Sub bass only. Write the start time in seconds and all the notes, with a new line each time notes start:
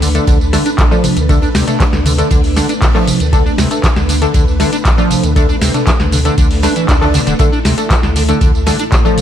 Already playing: D2
0.27 D2
0.78 A1
1.17 D2
1.55 D2
1.93 D2
2.31 D2
2.82 A1
3.20 D2
3.58 D2
3.96 D2
4.34 D2
4.85 A1
5.23 D2
5.62 D2
6.00 D2
6.38 D2
6.89 D2
7.27 D1
7.65 D2
8.03 D2
8.41 D2
8.92 A1